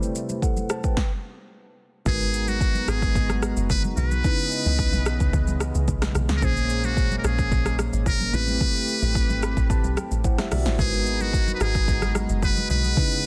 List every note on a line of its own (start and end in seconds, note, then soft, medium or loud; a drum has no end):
0.00 0.96 C3 medium
0.00 0.96 G3 medium
0.00 0.94 A3 medium
0.00 0.96 A3 medium
0.00 0.94 E4 medium
0.00 0.94 G4 medium
0.00 0.41 B4 medium
0.00 0.42 C5 medium
0.00 shaker medium
0.15 shaker medium
0.29 high conga soft
0.29 shaker medium
0.42 0.69 A4 medium
0.42 0.69 F#5 medium
0.42 kick medium
0.42 shaker medium
0.57 high conga medium
0.57 shaker medium
0.70 0.84 C5 medium
0.70 0.83 A5 medium
0.70 cross-stick loud
0.70 shaker medium
0.84 1.10 B4 medium
0.84 1.10 G5 medium
0.84 kick medium
0.84 shaker medium
0.97 kick loud
0.97 snare medium
2.05 2.84 G#1 loud
2.05 4.20 G#3 medium
2.05 4.22 G#3 medium
2.05 4.22 B3 medium
2.05 4.20 D#4 medium
2.05 4.22 D#4 medium
2.05 4.22 F#4 medium
2.05 4.21 F#4 medium
2.05 2.50 G#4 loud
2.05 4.21 A#4 medium
2.05 4.21 B4 medium
2.05 4.22 A#5 medium
2.05 kick loud
2.05 low conga medium
2.05 shaker medium
2.21 shaker medium
2.34 shaker medium
2.48 2.90 F#4 loud
2.48 high conga medium
2.48 shaker soft
2.61 kick loud
2.61 shaker medium
2.75 high conga medium
2.75 shaker medium
2.88 3.13 G#1 loud
2.88 3.43 G#4 loud
2.88 cross-stick loud
2.88 shaker medium
3.02 kick loud
3.02 shaker medium
3.15 3.53 G#1 loud
3.15 kick loud
3.15 low conga medium
3.15 shaker medium
3.29 cross-stick medium
3.29 high conga medium
3.29 shaker medium
3.43 cross-stick loud
3.43 high conga medium
3.43 shaker medium
3.57 3.94 F#1 medium
3.57 shaker medium
3.70 3.83 B4 loud
3.70 kick loud
3.70 low conga medium
3.70 shaker medium
3.84 high conga medium
3.84 shaker medium
3.97 4.22 B1 loud
3.97 5.57 B4 loud
3.97 low conga medium
3.97 shaker medium
4.11 high conga medium
4.11 shaker medium
4.24 6.38 C#3 medium
4.24 6.40 C#3 medium
4.24 6.40 E3 medium
4.24 8.30 G#3 medium
4.24 6.40 B3 medium
4.24 6.38 C#4 medium
4.24 6.39 D#4 medium
4.24 6.39 E4 medium
4.24 6.39 B4 medium
4.24 6.40 D#5 medium
4.24 kick loud
4.24 low conga medium
4.24 shaker medium
4.39 shaker medium
4.52 shaker medium
4.66 4.91 C#2 loud
4.66 high conga medium
4.66 shaker medium
4.79 kick loud
4.79 shaker medium
4.93 5.18 B1 loud
4.93 high conga medium
4.93 shaker medium
5.06 cross-stick loud
5.06 shaker medium
5.20 5.32 C#2 medium
5.20 kick loud
5.20 shaker medium
5.33 5.71 C#2 loud
5.33 kick loud
5.33 low conga medium
5.33 shaker medium
5.47 high conga medium
5.47 shaker medium
5.61 cross-stick loud
5.61 high conga medium
5.61 shaker medium
5.75 5.87 C#2 medium
5.75 shaker medium
5.88 6.13 B1 loud
5.88 kick loud
5.88 low conga medium
5.88 shaker medium
6.02 cross-stick loud
6.02 snare medium
6.02 high conga medium
6.02 shaker medium
6.15 6.28 B1 loud
6.15 cross-stick medium
6.15 low conga medium
6.15 shaker medium
6.29 6.42 C#2 medium
6.29 snare medium
6.29 high conga medium
6.29 shaker medium
6.37 6.46 A#4 medium
6.42 7.20 A#1 loud
6.42 8.29 A#2 medium
6.42 8.29 A#3 medium
6.42 8.32 A#3 medium
6.42 8.32 C#4 medium
6.42 8.30 C#4 medium
6.42 8.30 G#4 medium
6.42 6.87 G#4 loud
6.42 8.30 C5 medium
6.42 kick loud
6.42 low conga medium
6.42 shaker medium
6.57 shaker medium
6.70 shaker medium
6.84 7.18 F#4 loud
6.84 high conga medium
6.84 shaker soft
6.97 kick loud
6.97 shaker medium
7.11 high conga medium
7.11 shaker medium
7.18 7.27 A#4 medium
7.24 7.49 A#1 loud
7.24 7.79 G#4 loud
7.24 cross-stick loud
7.24 shaker medium
7.39 kick loud
7.39 shaker medium
7.52 7.90 A#1 loud
7.52 kick loud
7.52 low conga medium
7.52 shaker medium
7.66 cross-stick medium
7.66 high conga medium
7.66 shaker medium
7.79 cross-stick loud
7.79 high conga medium
7.79 shaker medium
7.93 8.30 G#1 medium
7.93 shaker medium
8.06 8.36 A#4 loud
8.06 kick loud
8.06 low conga medium
8.06 shaker medium
8.20 high conga medium
8.20 shaker medium
8.33 8.59 A1 loud
8.33 10.47 A3 medium
8.33 10.77 A3 medium
8.33 10.77 C4 medium
8.33 10.21 C4 medium
8.33 10.21 E4 medium
8.33 10.77 G4 medium
8.33 10.21 G4 medium
8.33 9.97 B4 loud
8.33 10.21 B4 medium
8.33 low conga medium
8.33 shaker medium
8.48 high conga medium
8.48 shaker medium
8.60 kick loud
8.60 low conga medium
8.60 shaker medium
8.75 shaker medium
8.88 shaker medium
9.02 9.27 A1 loud
9.02 high conga soft
9.02 shaker medium
9.15 kick medium
9.15 shaker medium
9.29 9.55 G#1 loud
9.29 high conga medium
9.29 shaker medium
9.43 9.68 B5 medium
9.43 cross-stick loud
9.43 shaker medium
9.57 9.69 A1 loud
9.57 kick loud
9.57 shaker medium
9.70 9.83 A1 loud
9.70 9.95 A5 medium
9.70 kick loud
9.70 low conga medium
9.70 shaker medium
9.84 9.96 B1 medium
9.84 high conga medium
9.84 shaker medium
9.97 10.23 G5 medium
9.97 cross-stick loud
9.97 high conga medium
9.97 shaker medium
10.11 10.23 A1 medium
10.11 shaker medium
10.24 10.37 A1 loud
10.24 10.38 E4 medium
10.24 10.38 C5 medium
10.24 10.50 F#5 medium
10.24 kick loud
10.24 shaker medium
10.38 10.52 G4 medium
10.38 10.51 E5 medium
10.38 cross-stick loud
10.38 snare medium
10.38 high conga medium
10.38 shaker medium
10.52 10.65 B1 loud
10.52 10.66 F#4 medium
10.52 10.65 D5 medium
10.52 10.77 E5 medium
10.52 cross-stick medium
10.52 open hi-hat medium
10.52 low conga medium
10.52 shaker medium
10.66 10.78 A1 medium
10.66 10.92 E4 medium
10.66 10.92 C5 medium
10.66 snare medium
10.66 high conga medium
10.66 shaker medium
10.78 11.57 G#1 loud
10.78 12.93 G#3 medium
10.78 13.26 G#3 medium
10.78 12.95 B3 medium
10.78 12.93 D#4 medium
10.78 12.93 F#4 medium
10.78 12.95 F#4 medium
10.78 11.23 G#4 loud
10.78 12.93 A#4 medium
10.78 12.94 B4 medium
10.78 13.26 D#5 medium
10.78 12.95 A#5 medium
10.78 kick loud
10.78 low conga medium
10.78 shaker medium
10.93 shaker medium
11.06 shaker medium
11.20 11.54 F#4 loud
11.20 high conga soft
11.20 shaker soft
11.33 kick loud
11.33 shaker medium
11.48 high conga medium
11.48 shaker medium
11.55 11.63 B4 medium
11.61 11.86 G#1 loud
11.61 12.16 G#4 loud
11.61 cross-stick loud
11.61 shaker medium
11.75 kick loud
11.75 shaker medium
11.88 12.26 G#1 loud
11.88 kick loud
11.88 low conga medium
11.88 shaker medium
12.02 cross-stick medium
12.02 high conga medium
12.02 shaker medium
12.15 cross-stick loud
12.15 high conga medium
12.15 shaker loud
12.29 12.67 F#1 medium
12.29 shaker medium
12.43 12.69 B4 loud
12.43 kick loud
12.43 low conga medium
12.43 shaker medium
12.57 high conga medium
12.57 shaker medium
12.70 12.95 B1 loud
12.70 13.26 B4 loud
12.70 low conga medium
12.70 shaker medium
12.84 high conga medium
12.84 shaker medium
12.96 13.26 C#3 medium
12.96 13.26 E3 medium
12.96 13.26 B3 medium
12.96 13.26 C#4 medium
12.96 13.26 D#4 medium
12.96 13.26 E4 medium
12.96 13.26 B4 medium
12.96 kick loud
12.96 low conga medium
12.96 shaker medium
13.12 shaker medium